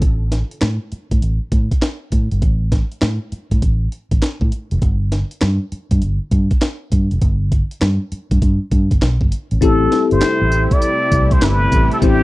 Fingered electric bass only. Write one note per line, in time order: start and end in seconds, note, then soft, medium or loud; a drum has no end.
0.02 0.42 A1 loud
0.62 0.78 A2 loud
0.92 muted fingered electric bass stroke soft
1.12 1.20 A2 medium
1.22 1.38 A1 medium
1.52 1.68 A2 loud
2.12 2.28 A2 medium
2.32 2.40 G1 medium
2.42 2.82 A1 loud
3.02 3.18 A2 medium
3.32 muted fingered electric bass stroke soft
3.52 3.60 A2 medium
3.62 3.87 A1 medium
4.12 4.20 A1 medium
4.41 4.50 A2 loud
4.72 4.80 F1 medium
4.82 5.22 G1 loud
5.42 5.58 G2 loud
5.72 muted fingered electric bass stroke soft
5.91 6.00 G2 loud
6.02 6.18 G1 medium
6.32 6.48 G2 loud
6.92 7.08 G2 medium
7.12 7.20 F1 medium
7.22 7.62 G1 loud
7.82 7.98 G2 loud
8.12 muted fingered electric bass stroke soft
8.31 8.40 G2 medium
8.42 8.58 G2 loud
8.72 8.88 G2 medium
8.91 9.00 G1 medium
9.02 9.18 B1 medium
9.21 9.30 G1 medium
9.52 9.60 A1 medium
9.62 9.86 A1 loud
10.12 10.20 G1 medium
10.22 muted fingered electric bass stroke medium
10.42 10.66 A1 medium
11.12 11.36 C2 medium
11.42 11.66 G1 loud
11.72 11.88 A1 loud
12.02 12.23 A1 loud